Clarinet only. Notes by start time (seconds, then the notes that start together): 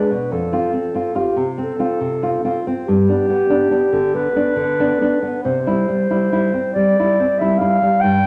Already playing: B4
0.32 A4
1.15 G4
1.57 A4
2.87 G4
4.14 B4
5.43 C5
6.73 D5
7.38 E5
7.58 F5
8.01 G5